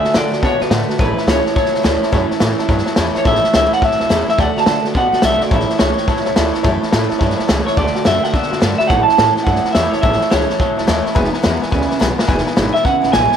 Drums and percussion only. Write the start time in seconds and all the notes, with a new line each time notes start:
0.04 snare
0.14 snare, hi-hat pedal
0.33 snare
0.43 kick, snare
0.61 snare
0.71 snare, hi-hat pedal
0.90 snare
0.99 kick, snare
1.18 snare
1.28 snare, hi-hat pedal
1.46 snare
1.56 kick, snare
1.65 snare
1.75 snare
1.84 snare, hi-hat pedal
2.03 snare
2.13 kick, snare
2.31 snare
2.40 snare, hi-hat pedal
2.58 snare
2.68 kick, snare
2.78 snare
2.86 snare
2.96 snare, hi-hat pedal
3.15 snare
3.25 kick, snare
3.35 snare
3.44 snare
3.54 snare, hi-hat pedal
3.72 snare
3.82 kick, snare
3.91 snare
4.00 snare
4.10 snare, hi-hat pedal
4.29 snare
4.39 kick, snare
4.57 snare
4.66 snare, hi-hat pedal
4.85 snare
4.95 kick, snare
5.13 snare
5.22 snare, hi-hat pedal
5.41 snare
5.50 kick, snare
5.60 snare
5.69 snare
5.79 snare, hi-hat pedal
5.97 snare
6.07 kick, snare
6.16 snare
6.25 snare
6.36 snare, hi-hat pedal
6.54 snare
6.64 kick, snare
6.82 snare
6.93 snare, hi-hat pedal
7.11 snare
7.20 kick, snare
7.30 snare
7.39 snare
7.49 snare, hi-hat pedal
7.67 snare
7.77 kick, snare
7.87 snare
7.95 snare
8.05 snare, hi-hat pedal
8.24 snare
8.34 kick, snare
8.42 snare
8.52 snare
8.62 snare, hi-hat pedal
8.79 snare
8.89 kick, snare
9.09 snare
9.18 snare, hi-hat pedal
9.36 snare
9.46 kick, snare
9.55 snare
9.65 snare
9.75 snare, hi-hat pedal
9.92 snare
10.03 kick, snare
10.12 snare
10.21 snare
10.31 snare, hi-hat pedal
10.50 snare
10.60 kick, snare
10.78 snare
10.88 snare, hi-hat pedal
11.06 snare
11.15 kick, snare
11.24 snare
11.34 snare
11.44 snare, hi-hat pedal
11.62 snare
11.72 kick, snare
11.81 snare
11.91 snare
12.01 snare, hi-hat pedal
12.19 snare
12.28 kick, snare
12.38 snare
12.46 snare
12.57 snare, hi-hat pedal
12.75 snare
12.85 kick, snare
13.03 snare
13.13 snare, hi-hat pedal
13.32 snare